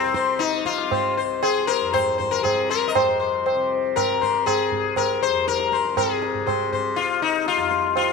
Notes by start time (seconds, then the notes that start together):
Already playing: C2 F2 C3 C4
0.05 C3
0.14 C5, tabla ke
0.39 D#4, tabla te
0.53 tabla te
0.64 C3 F4, tabla ke
0.78 tabla te
0.91 C5, tabla na, tabla ge
1.17 C5
1.23 C2
1.43 G#4 C5, tabla na
1.67 A#4 C5
1.81 F2
1.93 C5, tabla na, tabla ge
2.18 C5, tabla ge
2.31 A#4
2.40 C3 G#4
2.45 tabla na, tabla ge
2.69 A#4 C5, tabla te
2.88 D#5
2.95 F2 C5, tabla na, tabla ge
3.20 C5
3.46 C5, tabla na
3.55 C3
3.96 A#4, tabla na, tabla ge
4.13 C3
4.21 C5, tabla ge
4.46 G#4, tabla na, tabla ge
4.70 C2, tabla ge
4.96 A#4, tabla na, tabla ge
5.23 C5
5.28 F2
5.48 A#4, tabla te
5.60 tabla te
5.72 C5, tabla ke
5.85 C3, tabla te
5.97 G#4, tabla na, tabla ge
6.22 tabla te
6.35 tabla ge
6.40 C3
6.46 C5, tabla na, tabla ge
6.73 C5, tabla ge
6.96 C2 F4, tabla te
7.22 D#4, tabla te
7.46 F4, tabla te
7.56 F2, tabla te
7.71 tabla ke
7.84 tabla te
7.96 F4, tabla na